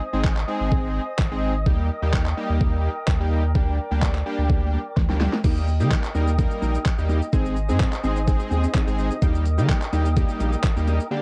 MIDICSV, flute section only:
0, 0, Header, 1, 2, 480
1, 0, Start_track
1, 0, Key_signature, -3, "major"
1, 0, Tempo, 472441
1, 1689, Time_signature, 4, 2, 24, 8
1, 11399, End_track
2, 0, Start_track
2, 0, Title_t, "Flute section"
2, 0, Program_c, 0, 73
2, 0, Note_on_c, 0, 72, 79
2, 0, Note_on_c, 0, 75, 73
2, 0, Note_on_c, 0, 80, 74
2, 0, Note_on_c, 0, 87, 91
2, 1398, Note_off_c, 0, 80, 0
2, 1669, Note_off_c, 0, 72, 0
2, 1689, Note_on_c, 0, 70, 82
2, 1689, Note_on_c, 0, 79, 73
2, 3568, Note_off_c, 0, 75, 0
2, 3568, Note_off_c, 0, 87, 0
2, 3607, Note_on_c, 0, 74, 70
2, 3608, Note_on_c, 0, 86, 87
2, 5238, Note_off_c, 0, 74, 0
2, 5266, Note_off_c, 0, 86, 0
2, 5490, Note_off_c, 0, 70, 0
2, 5490, Note_off_c, 0, 79, 0
2, 5530, Note_on_c, 0, 70, 79
2, 5530, Note_on_c, 0, 87, 86
2, 5531, Note_on_c, 0, 75, 73
2, 5531, Note_on_c, 0, 79, 72
2, 7217, Note_off_c, 0, 70, 0
2, 7430, Note_off_c, 0, 87, 0
2, 7431, Note_off_c, 0, 79, 0
2, 7449, Note_on_c, 0, 72, 81
2, 7449, Note_on_c, 0, 80, 75
2, 7449, Note_on_c, 0, 87, 89
2, 9105, Note_off_c, 0, 80, 0
2, 9349, Note_off_c, 0, 87, 0
2, 9350, Note_off_c, 0, 72, 0
2, 9369, Note_on_c, 0, 70, 83
2, 9369, Note_on_c, 0, 79, 74
2, 9369, Note_on_c, 0, 87, 90
2, 11249, Note_off_c, 0, 75, 0
2, 11270, Note_off_c, 0, 79, 0
2, 11270, Note_off_c, 0, 87, 0
2, 11289, Note_on_c, 0, 62, 80
2, 11289, Note_on_c, 0, 74, 73
2, 11289, Note_on_c, 0, 79, 75
2, 11289, Note_on_c, 0, 86, 95
2, 11399, Note_off_c, 0, 62, 0
2, 11399, Note_off_c, 0, 70, 0
2, 11399, Note_off_c, 0, 74, 0
2, 11399, Note_off_c, 0, 79, 0
2, 11399, Note_off_c, 0, 86, 0
2, 11399, End_track
0, 0, End_of_file